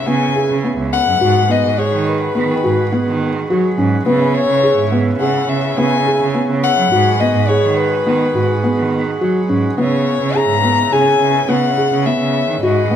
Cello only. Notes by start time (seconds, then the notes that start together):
0.07 C#3
0.50 C#3
0.78 C#2
1.07 F#2
1.21 G#2
1.64 G#2
1.93 D#3
2.35 D#3
2.65 G#2
3.08 D#3
3.50 F#3
3.78 G#2
4.06 C#3
4.49 C#3
4.79 G#2
5.20 C#3
5.49 C#3
5.78 C#3
6.20 C#3
6.49 C#3
6.77 F#3
6.91 G#2
7.35 G#2
7.63 D#3
8.06 D#3
8.35 G#2
8.78 D#3
9.20 F#3
9.49 G#2
9.78 C#3
10.21 C#3
10.50 G#2
10.92 C#3
11.20 C#3
11.48 C#3
11.91 C#3
12.20 C#3
12.48 D#3
12.62 G#2